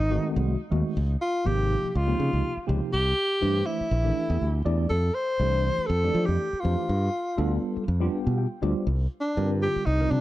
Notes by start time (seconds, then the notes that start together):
Already playing: D#4
0.00 G#1
0.11 D#3 G#3 A3 C4 F#4
0.36 C2
0.70 D#2 D#3 G#3 A3 C4 F#4
0.97 C#2
1.22 F4
1.45 G#1 C3 F3 A#3 D#4 G4
1.84 muted fingered electric bass stroke
1.89 G4
1.95 C#2 F4
2.07 C3 F3 A#3 D#4 G4
2.19 C#3
2.33 C#2
2.57 muted fingered electric bass stroke
2.66 C#2 C3 F3 A#3 D#4 G4
2.93 C2 G4
3.41 G2 E3 A3 D4 G4 C5
3.66 E4
3.81 muted fingered electric bass stroke
3.91 A#1
4.03 E3 A3 D4 G4 A4
4.30 E2
4.41 D2
4.65 E2 E3 A3 D4 G4 D5
4.90 F2 A4
5.14 C5
5.40 C2 E3 A3 D4 G4 C5
5.78 muted fingered electric bass stroke
5.87 F2 A4
6.03 E3 A3 D4 G4 D5
6.15 F3
6.26 F2 G4
6.53 muted fingered electric bass stroke
6.60 E3 A3 F4
6.64 F2 D4 G4 C5
6.89 G2
7.37 D2 G3 B3 D4 F4 A4
7.77 muted fingered electric bass stroke
7.88 F2
8.00 G3 B3 D4 F4 G4
8.27 B2
8.38 G5
8.62 D2 G3 B3 D4 F4 G4 C5
8.87 C2
9.20 D4
9.37 G2 D3 G3 C4 F4 A#4
9.62 G4
9.76 muted fingered electric bass stroke
9.85 C2 D#4
10.00 D3 G3 C4 F4 A#4
10.11 C3 D4